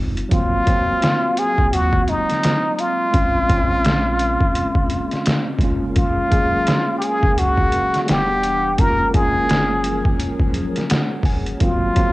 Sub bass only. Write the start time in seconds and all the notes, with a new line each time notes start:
Already playing: F#1
0.32 G#1
1.59 C2
1.74 D#2
3.15 A#1
5.59 F#1
7.24 F#1
7.39 C#2
8.09 E1
8.79 F#1
11.24 F#1
11.62 G#1